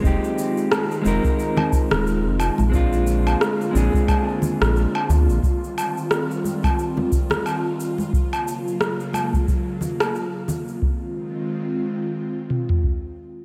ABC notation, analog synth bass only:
X:1
M:4/4
L:1/16
Q:"Swing 16ths" 1/4=89
K:Fdor
V:1 name="Analog synth bass" clef=bass
F,,, z4 z F,,, z4 E,,,2 F,,,2 B,,,- | B,,,4 z2 B,,, z4 B,,,2 z D,, B,,, | z16 | z16 |
z16 |]